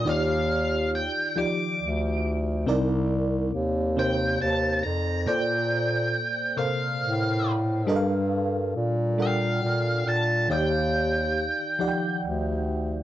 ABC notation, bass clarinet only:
X:1
M:6/8
L:1/8
Q:3/8=46
K:Eblyd
V:1 name="Bass clarinet" clef=bass
E,,2 z D,, D,,2 | C,,2 E,,2 E,, F,, | B,,2 z A,, A,,2 | G,,2 B,,2 B,, B,, |
E,,2 z D,, D,,2 |]